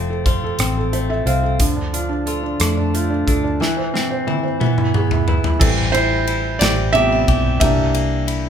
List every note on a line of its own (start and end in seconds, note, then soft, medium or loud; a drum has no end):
0.00 0.55 F1 medium
0.00 1.56 F3 soft
0.00 0.93 A3 medium
0.00 0.58 C4 soft
0.00 0.10 A4 soft
0.00 0.25 C5 soft
0.10 0.42 A4 soft
0.26 1.66 F4 medium
0.26 0.92 C5 soft
0.26 kick medium
0.26 cross-stick soft
0.26 closed hi-hat soft
0.44 0.76 A4 soft
0.59 1.22 A1 medium
0.59 1.26 C4 medium
0.59 1.57 C4 medium
0.59 cross-stick medium
0.59 closed hi-hat medium
0.77 1.08 A4 soft
0.93 2.94 A3 soft
0.93 1.09 C5 medium
0.93 closed hi-hat soft
1.10 1.42 A4 soft
1.10 1.25 E5 medium
1.26 1.57 C2 medium
1.26 1.67 C4 medium
1.26 1.59 C5 soft
1.26 1.57 F5 medium
1.26 closed hi-hat soft
1.43 1.59 A4 soft
1.59 2.56 D2 medium
1.59 3.57 D3 medium
1.59 3.60 F3 medium
1.59 kick medium
1.59 closed hi-hat medium
1.76 2.08 D4 soft
1.93 2.60 D4 soft
1.93 2.92 F4 soft
1.93 closed hi-hat soft
2.09 2.42 D4 soft
2.26 3.68 F4 medium
2.26 3.25 A4 medium
2.26 closed hi-hat soft
2.43 2.76 D4 soft
2.60 3.23 F2 medium
2.60 3.57 A3 medium
2.60 3.27 D4 medium
2.60 cross-stick medium
2.60 closed hi-hat medium
2.77 3.08 D4 soft
2.94 3.68 A3 medium
2.94 3.59 F4 soft
2.94 closed hi-hat soft
3.10 3.42 D4 soft
3.27 3.59 D2 medium
3.27 3.68 D4 medium
3.27 3.59 A4 medium
3.27 kick medium
3.27 closed hi-hat soft
3.44 3.60 D4 soft
3.61 4.25 E3 medium
3.61 6.98 E3 medium
3.61 snare soft
3.77 4.09 C5 soft
3.94 4.59 C4 soft
3.94 4.60 C4 medium
3.94 snare medium
4.11 4.42 C5 soft
4.27 4.59 E3 soft
4.27 5.27 E4 medium
4.27 high tom medium
4.43 4.60 C5 soft
4.60 5.58 E3 medium
4.60 4.93 B3 medium
4.60 mid tom medium
4.78 5.10 E4 medium
4.78 mid tom medium
4.94 5.61 B3 medium
4.94 5.59 G#4 medium
4.94 mid tom medium
5.11 5.43 E4 soft
5.11 floor tom medium
5.28 6.28 E4 medium
5.28 5.60 B4 soft
5.28 floor tom medium
5.44 5.61 E4 soft
5.44 floor tom medium
5.60 6.57 A1 medium
5.60 7.57 E3 medium
5.60 6.92 G3 soft
5.60 5.94 C4 medium
5.60 5.69 C4 medium
5.60 5.67 A4 medium
5.60 7.58 B4 medium
5.60 kick loud
5.60 crash medium
5.92 6.61 C4 medium
5.92 6.57 E4 medium
5.92 6.62 C5 medium
5.92 ride soft
6.27 6.95 E4 medium
6.27 ride soft
6.59 7.24 A1 medium
6.59 7.68 C4 medium
6.59 6.92 G4 medium
6.59 6.95 D5 medium
6.59 snare loud
6.59 ride medium
6.93 7.24 C3 soft
6.93 7.24 G3 soft
6.93 7.25 B3 soft
6.93 7.12 D4 medium
6.93 7.58 G4 medium
6.93 7.58 E5 loud
6.93 ride soft
7.12 7.69 E4 soft
7.28 7.60 B1 medium
7.28 7.68 G4 medium
7.28 kick medium
7.28 ride soft
7.60 8.49 C2 loud
7.60 8.49 E3 soft
7.60 8.49 G3 medium
7.60 8.49 A#3 soft
7.60 8.49 D4 medium
7.60 8.33 G4 medium
7.60 8.32 E5 medium
7.60 kick loud
7.60 ride medium
7.95 8.49 A#3 medium
7.95 ride soft
8.28 8.49 E4 medium
8.28 ride soft